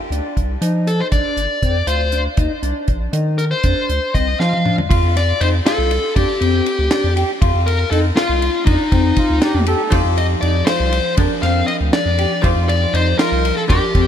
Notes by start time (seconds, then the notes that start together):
0.10 D2 D4, closed hi-hat
0.37 C2, kick, closed hi-hat
0.61 F3 D#4, closed hi-hat
0.87 A4, closed hi-hat
1.00 C5
1.12 A#1 D4 D5, kick, closed hi-hat
1.37 G1, closed hi-hat
1.62 F2 C4, kick, closed hi-hat
1.87 D2 F4 C5, closed hi-hat
2.12 D4, closed hi-hat
2.37 D#2 D#4, kick, closed hi-hat
2.62 C2 D4, closed hi-hat
2.88 A#1, kick, closed hi-hat
3.13 D#3 D#4, closed hi-hat
3.38 A#4, closed hi-hat
3.51 C5
3.63 F2 D4, kick, closed hi-hat
3.89 D2, closed hi-hat
4.14 C2 C4 D#5, kick, closed hi-hat
4.40 F3 F4 F5, snare
4.53 high tom
4.65 D4, mid tom
4.78 floor tom
4.89 F2 F4, kick, ride
5.03 F2
5.17 D5, snare, ride
5.40 F2 D#4 C5, ride
5.65 F4 A4, snare, ride
5.78 C2
5.91 ride
6.16 F2 D4 G4, kick, ride
6.40 F2 C4, ride
6.66 ride
6.79 D2
6.91 D4, snare, ride
7.04 F2
7.16 G4, ride
7.41 F2 F4, kick, ride
7.55 F2
7.66 A#4, ride
7.91 F2 D#4 A4, ride
8.16 F4, snare, ride
8.29 C2
8.42 ride
8.66 F2 D4 D#4, kick, ride
8.92 F2 C4, kick, ride
9.16 F4, kick, ride
9.30 D2
9.41 D4 G4, snare, ride
9.55 F2
9.66 G4 A4, ride
9.90 F2 F3 D#4 F4 G4 A4 D5, kick, ride
10.05 F2
10.18 D#5, ride
10.41 F2 D#4 D5, ride
10.66 F4 C5, snare, ride
10.80 C2
10.92 ride
11.17 F2 F3 D4 G4 A#4, kick, ride
11.42 F2 C4 F5, snare, ride
11.67 D#5, ride
11.81 D2
11.93 D4 D5, snare, ride
12.06 F2
12.19 G4, ride
12.42 F2 F3 D#4 F4 G4 C5 D5, kick, ride
12.56 F2
12.69 D5, ride
12.94 F2 D#4 C5, ride
13.18 F4 A#4, snare, ride
13.32 C2
13.45 ride
13.57 A4
13.68 F2 F3 D4 G4 A#4 D5, kick, ride
13.95 F2 C4, kick, ride